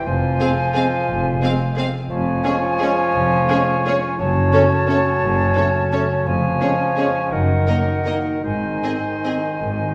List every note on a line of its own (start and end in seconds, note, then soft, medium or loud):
0.00 0.73 C5 medium
0.04 0.34 F1 medium
0.04 1.07 F2 medium
0.04 0.34 F2 medium
0.04 1.85 F3 medium
0.04 1.80 F4 medium
0.04 1.81 C5 medium
0.04 1.85 G#5 medium
0.22 1.24 C3 medium
0.39 0.52 G#3 soft
0.39 1.41 G#3 soft
0.39 0.52 C4 medium
0.39 0.49 C4 medium
0.39 0.48 G#4 medium
0.39 0.48 F5 medium
0.74 0.87 G#3 medium
0.74 0.86 C4 medium
0.74 0.83 C4 medium
0.74 0.82 G#4 medium
0.74 1.76 C5 medium
0.74 0.83 F5 medium
0.92 1.59 F4 soft
1.08 1.37 F1 medium
1.08 1.36 F2 medium
1.08 2.09 F2 medium
1.25 2.12 C3 medium
1.41 1.54 G#3 medium
1.41 2.44 G#3 medium
1.41 1.54 C4 medium
1.41 1.51 C4 medium
1.41 1.50 G#4 medium
1.41 1.51 F5 medium
1.60 1.93 F4 medium
1.76 1.89 G#3 medium
1.76 1.89 C4 medium
1.76 1.85 C4 medium
1.76 1.84 G#4 medium
1.76 2.12 C5 medium
1.76 1.86 F5 medium
1.94 4.20 F4 soft
2.10 2.39 F1 medium
2.10 3.13 F2 medium
2.10 2.39 F2 medium
2.10 4.14 F3 medium
2.10 4.21 F4 medium
2.10 4.15 C#5 medium
2.10 4.15 G#5 medium
2.27 3.30 F3 medium
2.44 2.58 G#3 medium
2.44 3.48 G#3 medium
2.44 2.57 C#4 medium
2.44 2.53 C#4 medium
2.44 2.52 G#4 medium
2.44 2.54 C#5 medium
2.63 2.97 C#4 medium
2.78 2.93 G#3 medium
2.78 2.93 C#4 medium
2.78 2.89 C#4 medium
2.78 2.86 G#4 medium
2.78 3.84 C#5 medium
2.83 2.91 C#5 medium
2.98 3.66 C#4 soft
3.15 3.43 F1 medium
3.15 4.20 F2 medium
3.15 3.43 F2 medium
3.32 4.20 F3 medium
3.48 4.20 G#3 medium
3.48 3.62 G#3 medium
3.48 3.58 C#4 medium
3.48 3.63 C#4 medium
3.48 3.56 G#4 medium
3.48 3.59 C#5 medium
3.67 4.02 C#4 medium
3.85 3.98 G#3 medium
3.85 3.98 C#4 medium
3.85 3.94 C#4 medium
3.85 3.93 G#4 medium
3.85 4.87 C#5 medium
3.85 3.96 C#5 medium
4.03 4.70 C#4 medium
4.18 4.47 F#1 medium
4.18 4.47 F#2 medium
4.18 5.21 F#2 medium
4.18 6.29 F#3 medium
4.18 6.26 C#4 medium
4.18 6.23 C#5 medium
4.18 6.22 A5 medium
4.36 5.37 C#3 medium
4.53 5.55 A3 medium
4.53 4.67 A3 medium
4.53 4.61 C#4 medium
4.53 4.67 C#4 medium
4.53 4.61 A4 medium
4.53 4.62 C#5 medium
4.71 5.04 C#4 medium
4.87 5.00 A3 medium
4.87 4.96 C#4 medium
4.87 5.00 C#4 medium
4.87 4.95 A4 medium
4.87 5.91 C#5 medium
4.87 4.98 C#5 medium
5.05 5.73 C#4 medium
5.22 5.51 F#1 medium
5.22 6.28 F#2 medium
5.22 5.50 F#2 medium
5.39 6.28 C#3 medium
5.55 6.27 A3 medium
5.55 5.69 A3 medium
5.55 5.64 C#4 medium
5.55 5.70 C#4 medium
5.55 5.63 A4 medium
5.55 5.65 C#5 medium
5.75 6.09 C#4 medium
5.92 6.06 A3 medium
5.92 6.00 C#4 medium
5.92 6.06 C#4 medium
5.92 6.00 A4 medium
5.92 6.01 C#5 medium
5.92 6.97 C#5 medium
6.10 6.79 C#4 medium
6.26 6.55 F1 medium
6.26 6.55 F2 medium
6.26 7.34 F2 medium
6.26 7.34 F3 medium
6.26 7.34 C#4 medium
6.26 7.33 C#5 medium
6.26 7.34 G#5 medium
6.44 7.34 F3 medium
6.61 7.34 G#3 medium
6.61 6.75 G#3 medium
6.61 6.69 C#4 medium
6.61 6.75 C#4 medium
6.61 6.69 G#4 medium
6.61 6.70 C#5 soft
6.80 7.15 C#4 soft
6.96 7.10 G#3 medium
6.96 7.10 C#4 medium
6.96 7.06 C#4 medium
6.96 7.04 G#4 soft
6.96 7.05 C#5 medium
6.96 7.34 C#5 medium
7.16 7.34 C#4 soft
7.32 7.62 F#1 medium
7.32 7.62 F#2 medium
7.32 8.46 F#2 medium
7.32 8.43 D#3 medium
7.32 8.43 D#4 medium
7.32 8.43 A#4 medium
7.32 8.44 F#5 medium
7.50 8.46 F#3 soft
7.68 7.76 A#3 soft
7.68 8.46 A#3 soft
7.68 7.83 A#3 soft
7.68 7.82 D#4 soft
7.68 7.76 A#4 medium
7.68 7.76 D#5 soft
7.88 8.25 D#4 soft
8.05 8.14 A#3 soft
8.05 8.20 A#3 soft
8.05 8.19 D#4 soft
8.05 8.13 A#4 soft
8.05 8.46 A#4 soft
8.05 8.14 D#5 soft
8.26 9.03 D#4 soft
8.44 8.77 G#1 medium
8.44 9.61 G#2 medium
8.44 8.77 G#2 medium
8.44 9.94 D#3 medium
8.44 9.94 D#4 soft
8.44 9.94 C5 medium
8.44 9.94 G#5 soft
8.64 9.80 D#3 soft
8.83 8.98 C4 soft
8.83 8.91 C4 soft
8.83 8.98 D#4 soft
8.83 8.92 G#4 soft
8.83 8.92 D#5 soft
9.05 9.43 D#4 soft
9.24 9.38 C4 soft
9.24 9.32 C4 soft
9.24 9.38 D#4 soft
9.24 9.94 G#4 soft
9.24 9.34 G#4 soft
9.24 9.32 D#5 soft
9.44 9.94 D#4 soft
9.62 9.94 G#1 medium
9.62 9.94 G#2 medium
9.81 9.94 D#3 soft